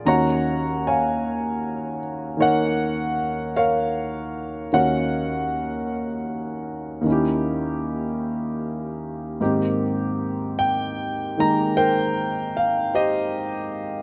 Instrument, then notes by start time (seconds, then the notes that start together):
grand piano
0.05 D#2 D#3 C#4 F#4 C#5 F#5 A#5
0.87 C#5 F5 G#5
2.37 D#3 A#3 D#4 A#4 C#5
2.42 F#5
3.56 A#4 C#5 F5
4.72 D#2 D#3 C#4 D#4 F#4 A#4 C#5 F#5
7.01 D#2 D#3
7.07 C#4 E4
7.12 G4
9.41 G#2 D#3 A#3 C4 G4
10.59 G5
11.37 D#3 G#3 A#3 D#4 A#5
11.77 A#4 C5 G5
12.57 F5
12.95 G4 C5 D#5